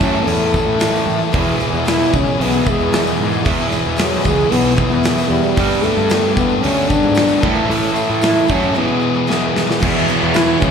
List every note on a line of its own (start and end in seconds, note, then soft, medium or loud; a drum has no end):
0.00 0.21 F#2 loud
0.00 0.13 E3 medium
0.00 0.25 E3 medium
0.00 1.30 A3 medium
0.00 0.14 A3 medium
0.00 0.26 C#4 medium
0.00 1.30 C#4 medium
0.00 0.13 C#4 medium
0.00 1.30 E4 medium
0.00 0.11 E4 medium
0.00 0.28 A4 medium
0.00 1.30 A4 medium
0.00 kick medium
0.00 tambourine medium
0.04 1.07 A2 medium
0.13 0.40 A3 soft
0.13 0.39 C#4 soft
0.13 0.37 E4 medium
0.13 tambourine soft
0.25 0.56 E2 loud
0.25 0.79 E3 medium
0.25 1.05 A3 medium
0.25 0.55 A3 medium
0.25 0.53 C#4 medium
0.25 open hi-hat medium
0.29 0.51 A4 medium
0.29 tambourine soft
0.38 0.52 A3 soft
0.38 0.53 C#4 medium
0.38 0.53 E4 medium
0.38 tambourine soft
0.52 0.67 E3 medium
0.52 0.67 A3 medium
0.52 0.66 C#4 medium
0.52 0.65 E4 medium
0.52 0.80 A4 medium
0.52 kick medium
0.52 tambourine medium
0.66 0.87 A2 medium
0.66 0.79 A3 soft
0.66 0.79 C#4 soft
0.66 0.79 E4 medium
0.66 tambourine soft
0.79 1.19 A2 medium
0.79 1.20 E3 medium
0.79 1.20 A3 medium
0.79 1.19 C#4 medium
0.79 1.18 E4 medium
0.79 1.32 A4 medium
0.79 snare loud
0.79 open hi-hat medium
0.79 tambourine medium
0.96 tambourine medium
1.07 1.17 A2 medium
1.07 tambourine soft
1.19 1.34 A3 soft
1.19 1.33 C#4 medium
1.19 1.33 E4 medium
1.19 tambourine soft
1.32 1.59 E2 medium
1.32 1.54 E2 medium
1.32 1.59 B2 medium
1.32 1.58 E3 loud
1.32 5.54 G#3 medium
1.32 1.60 G#3 medium
1.32 5.54 B3 medium
1.32 1.60 B3 loud
1.32 5.54 E4 medium
1.32 1.60 E4 loud
1.32 5.54 G#4 medium
1.32 1.89 G#4 loud
1.32 kick loud
1.32 open hi-hat medium
1.32 tambourine soft
1.48 tambourine soft
1.59 1.73 E3 medium
1.59 1.73 G#3 medium
1.59 1.73 B3 medium
1.59 1.72 E4 medium
1.59 tambourine medium
1.73 2.03 E2 medium
1.73 1.84 E3 soft
1.73 1.85 G#3 soft
1.73 1.85 B3 soft
1.73 1.86 E4 medium
1.73 tambourine soft
1.85 2.12 E2 medium
1.85 2.12 B2 medium
1.85 2.11 E3 medium
1.85 2.13 G#3 medium
1.85 2.13 B3 medium
1.85 2.13 E4 medium
1.85 2.17 E4 loud
1.85 snare loud
1.85 open hi-hat medium
1.85 tambourine medium
1.90 2.12 G#4 medium
2.01 tambourine soft
2.12 2.23 C#2 medium
2.12 2.25 E3 medium
2.12 2.25 G#3 medium
2.12 2.25 B3 medium
2.12 2.44 C#4 medium
2.12 2.24 E4 medium
2.12 2.41 G#4 medium
2.12 kick medium
2.12 tambourine medium
2.25 2.52 E3 soft
2.25 2.52 G#3 soft
2.25 2.51 B3 medium
2.25 2.50 E4 medium
2.25 tambourine soft
2.38 2.60 B1 loud
2.38 3.44 E2 medium
2.38 3.44 B2 medium
2.38 2.67 E3 medium
2.38 2.67 B3 medium
2.38 2.65 E4 medium
2.38 open hi-hat medium
2.42 3.45 E3 medium
2.42 2.71 B3 medium
2.42 2.64 G#4 medium
2.51 2.63 E3 soft
2.51 2.64 G#3 soft
2.51 2.65 B3 medium
2.51 2.65 E4 medium
2.65 2.78 E3 medium
2.65 2.79 G#3 medium
2.65 2.78 B3 medium
2.65 2.77 E4 medium
2.65 2.94 G#4 medium
2.65 kick medium
2.65 tambourine medium
2.69 2.93 E3 medium
2.69 3.20 G#3 medium
2.78 3.00 E2 loud
2.78 2.92 E3 soft
2.78 2.93 G#3 soft
2.78 2.92 B3 medium
2.78 2.92 E4 medium
2.78 tambourine soft
2.92 3.32 E2 medium
2.92 3.32 B2 medium
2.92 3.32 E3 medium
2.92 3.32 G#3 medium
2.92 3.31 B3 medium
2.92 3.30 E4 medium
2.92 3.47 G#4 medium
2.92 snare loud
2.92 open hi-hat medium
2.92 tambourine loud
3.07 tambourine medium
3.20 3.40 G#2 medium
3.31 3.44 E3 soft
3.31 3.45 G#3 soft
3.31 3.44 B3 medium
3.31 3.45 E4 medium
3.31 tambourine soft
3.45 3.72 E2 medium
3.45 3.66 E2 loud
3.45 3.72 B2 medium
3.45 3.69 E3 medium
3.45 3.71 G#3 loud
3.45 3.71 B3 medium
3.45 3.72 E4 medium
3.45 3.99 G#4 medium
3.45 kick loud
3.45 open hi-hat medium
3.45 tambourine soft
3.60 tambourine soft
3.70 3.84 E3 medium
3.70 3.84 G#3 medium
3.70 3.84 B3 medium
3.70 3.82 E4 medium
3.70 tambourine medium
3.83 4.15 E2 medium
3.83 3.95 E3 soft
3.83 3.96 G#3 soft
3.83 3.96 B3 medium
3.83 3.97 E4 medium
3.83 tambourine soft
3.96 4.24 E2 medium
3.96 4.24 B2 medium
3.96 4.20 E3 medium
3.96 4.27 F#3 medium
3.96 4.21 G#3 medium
3.96 4.22 B3 medium
3.96 4.23 E4 medium
3.96 4.22 G#4 medium
3.96 snare loud
3.96 open hi-hat medium
3.96 tambourine medium
4.22 4.36 E3 medium
4.22 4.36 G#3 medium
4.22 4.35 B3 medium
4.22 4.35 E4 medium
4.22 4.52 G#4 medium
4.22 kick medium
4.22 tambourine medium
4.26 4.45 C#2 loud
4.26 4.49 E3 medium
4.26 4.53 G#3 medium
4.36 4.63 E3 soft
4.36 4.62 G#3 soft
4.36 4.62 B3 medium
4.36 4.60 E4 medium
4.36 tambourine soft
4.50 4.81 B1 medium
4.50 5.56 E2 medium
4.50 5.56 B2 medium
4.50 4.79 E3 medium
4.50 4.78 B3 medium
4.50 4.76 B3 loud
4.50 4.77 E4 medium
4.50 4.76 G#4 medium
4.50 open hi-hat medium
4.54 5.57 E3 medium
4.62 4.75 E3 soft
4.62 4.76 G#3 medium
4.62 4.77 B3 medium
4.62 4.76 E4 medium
4.76 4.90 E3 medium
4.76 4.91 G#3 medium
4.76 5.31 B3 loud
4.76 4.89 B3 medium
4.76 4.89 E4 medium
4.76 5.06 G#4 medium
4.76 kick medium
4.76 tambourine medium
4.80 5.03 E3 medium
4.90 5.11 E2 loud
4.90 5.03 E3 soft
4.90 5.03 G#3 soft
4.90 5.03 B3 medium
4.90 5.04 E4 medium
4.90 tambourine soft
5.03 5.44 E2 medium
5.03 5.44 B2 medium
5.03 5.44 E3 medium
5.03 5.44 G#3 medium
5.03 5.43 B3 medium
5.03 5.42 E4 medium
5.03 5.57 G#4 medium
5.03 snare loud
5.03 open hi-hat medium
5.03 tambourine medium
5.18 tambourine medium
5.29 5.40 E2 medium
5.29 5.85 G3 medium
5.43 5.56 E3 soft
5.43 5.56 G#3 soft
5.43 5.56 B3 soft
5.43 5.57 E4 medium
5.43 tambourine soft
5.56 6.36 G2 medium
5.56 6.62 G2 medium
5.56 5.78 G2 medium
5.56 6.37 D3 medium
5.56 6.62 D3 medium
5.56 5.82 G3 medium
5.56 7.42 A3 medium
5.56 5.83 B3 medium
5.56 7.42 B3 medium
5.56 7.41 D4 medium
5.56 5.83 D4 medium
5.56 7.42 G4 medium
5.56 5.84 A4 loud
5.56 kick loud
5.56 open hi-hat medium
5.56 tambourine soft
5.60 6.63 G3 loud
5.60 6.12 G4 loud
5.70 tambourine soft
5.83 5.97 G3 medium
5.83 6.35 A3 loud
5.83 5.97 B3 medium
5.83 5.97 D4 medium
5.83 5.96 A4 medium
5.83 tambourine medium
5.97 6.27 G2 medium
5.97 6.10 B3 soft
5.97 6.11 D4 medium
5.97 6.10 A4 medium
5.97 tambourine soft
6.09 6.35 G3 medium
6.09 6.36 B3 medium
6.09 6.37 D4 medium
6.09 6.35 G4 medium
6.09 6.37 A4 medium
6.09 snare loud
6.09 open hi-hat medium
6.09 tambourine medium
6.23 tambourine soft
6.35 6.47 E2 loud
6.35 6.50 G3 medium
6.35 6.57 B3 loud
6.35 6.50 B3 medium
6.35 6.50 D4 medium
6.35 6.64 G4 medium
6.35 6.49 A4 medium
6.35 kick medium
6.35 tambourine medium
6.40 6.61 G3 medium
6.49 6.77 B3 soft
6.49 6.76 D4 soft
6.49 6.74 A4 medium
6.49 tambourine soft
6.57 6.63 B3 medium
6.62 6.84 D2 medium
6.62 7.41 G2 medium
6.62 7.42 D3 medium
6.62 6.91 G3 medium
6.62 6.91 B3 medium
6.62 6.90 C#4 loud
6.62 6.89 D4 medium
6.62 6.88 G4 medium
6.62 open hi-hat medium
6.66 7.43 G3 medium
6.76 6.89 B3 soft
6.76 6.89 D4 medium
6.76 6.90 A4 medium
6.89 7.03 G3 medium
6.89 7.03 B3 medium
6.89 7.42 D4 loud
6.89 7.03 D4 medium
6.89 7.18 G4 medium
6.89 7.02 A4 medium
6.89 kick medium
6.89 tambourine medium
7.03 7.24 G#2 loud
7.03 7.16 B3 soft
7.03 7.17 D4 soft
7.03 7.16 A4 medium
7.03 tambourine soft
7.15 7.41 G2 medium
7.15 7.41 D3 medium
7.15 7.42 G3 medium
7.15 7.43 B3 medium
7.15 7.44 D4 medium
7.15 7.43 A4 loud
7.15 snare loud
7.15 open hi-hat medium
7.15 tambourine loud
7.19 7.41 G4 medium
7.28 tambourine medium
7.41 7.96 A2 medium
7.41 7.63 A2 medium
7.41 7.94 E3 medium
7.41 7.95 A3 medium
7.41 7.60 A#3 medium
7.41 7.95 C#4 medium
7.41 7.61 D4 medium
7.41 7.96 E4 medium
7.41 7.61 F4 medium
7.41 7.71 A4 medium
7.41 7.61 A#4 medium
7.41 kick loud
7.56 tambourine soft
7.62 8.76 A3 medium
7.62 8.75 C#4 medium
7.62 8.74 E4 medium
7.62 8.76 A4 medium
7.68 8.48 A2 medium
7.68 7.90 A2 loud
7.68 8.21 E3 loud
7.68 8.22 A3 loud
7.68 8.23 C#4 loud
7.68 8.24 A4 loud
7.68 open hi-hat medium
7.68 tambourine soft
7.83 tambourine soft
7.95 8.09 E3 medium
7.95 8.09 A3 medium
7.95 8.09 C#4 medium
7.95 8.07 E4 medium
7.95 tambourine medium
8.08 8.40 A2 medium
8.08 8.22 A3 medium
8.08 8.22 C#4 medium
8.08 8.22 E4 medium
8.08 tambourine soft
8.21 8.49 A2 medium
8.21 8.46 E3 medium
8.21 8.47 A3 medium
8.21 8.48 C#4 medium
8.21 8.52 E4 loud
8.21 8.50 E4 medium
8.21 8.46 A4 medium
8.21 snare loud
8.21 open hi-hat medium
8.21 tambourine medium
8.47 8.69 F#2 loud
8.47 8.62 E3 medium
8.47 8.62 A3 medium
8.47 8.63 C#4 medium
8.47 8.79 C#4 medium
8.47 8.61 E4 medium
8.47 8.73 A4 medium
8.47 kick medium
8.47 tambourine medium
8.51 8.76 A2 medium
8.51 8.75 E3 medium
8.62 8.76 A3 soft
8.62 8.76 C#4 medium
8.62 8.75 E4 medium
8.62 tambourine soft
8.74 8.88 E2 medium
8.74 8.89 B2 medium
8.74 8.89 E3 medium
8.74 9.80 G#3 medium
8.74 8.88 G#3 medium
8.74 9.80 B3 medium
8.74 8.87 B3 medium
8.74 9.29 B3 medium
8.74 9.81 E4 medium
8.74 8.86 E4 medium
8.74 9.80 G#4 medium
8.74 8.99 G#4 loud
8.87 8.99 E3 soft
8.87 9.00 G#3 medium
8.87 9.00 B3 soft
8.87 9.01 E4 medium
9.00 9.14 E3 medium
9.00 9.15 G#3 medium
9.00 9.15 B3 medium
9.00 9.13 E4 medium
9.00 9.29 G#4 medium
9.04 9.27 E3 medium
9.14 9.27 E3 soft
9.14 9.27 G#3 soft
9.14 9.27 B3 soft
9.14 9.28 E4 medium
9.27 9.68 E2 medium
9.27 9.68 B2 medium
9.27 9.68 E3 medium
9.27 9.68 G#3 medium
9.27 9.67 B3 medium
9.27 9.66 E4 medium
9.27 9.81 G#4 medium
9.27 snare medium
9.56 snare medium
9.68 9.79 E3 soft
9.68 9.79 G#3 medium
9.68 9.80 B3 medium
9.68 9.81 E4 medium
9.68 snare medium
9.80 10.07 E2 loud
9.80 10.02 E2 medium
9.80 10.08 B2 medium
9.80 10.07 E3 medium
9.80 10.08 G#3 medium
9.80 10.71 G#3 medium
9.80 10.08 B3 loud
9.80 10.71 B3 medium
9.80 10.08 E4 medium
9.80 10.71 E4 medium
9.80 10.71 G#4 medium
9.80 10.36 G#4 loud
9.80 kick loud
9.80 crash loud
9.80 tambourine soft
9.80 crash medium
9.85 10.61 E3 loud
9.85 10.71 E3 medium
9.96 tambourine soft
10.08 10.22 E3 medium
10.08 10.22 G#3 medium
10.08 10.21 B3 medium
10.08 10.20 E4 medium
10.08 tambourine medium
10.08 crash medium
10.21 10.52 E2 medium
10.21 10.33 E3 soft
10.21 10.33 G#3 medium
10.21 10.34 B3 medium
10.21 10.34 E4 medium
10.21 tambourine soft
10.34 10.61 E2 medium
10.34 10.61 B2 medium
10.34 10.59 E3 medium
10.34 10.59 G#3 medium
10.34 10.60 B3 medium
10.34 10.62 E4 loud
10.34 10.61 E4 medium
10.34 10.60 G#4 medium
10.34 snare loud
10.34 tambourine medium
10.34 crash medium
10.60 10.71 C#2 loud
10.60 10.71 B2 medium
10.60 10.71 E3 medium
10.60 10.71 G#3 medium
10.60 10.71 B3 medium
10.60 10.71 C#4 loud
10.60 10.71 E4 medium
10.60 10.71 G#4 medium
10.60 kick loud
10.60 tambourine medium
10.60 crash medium
10.65 10.71 E2 medium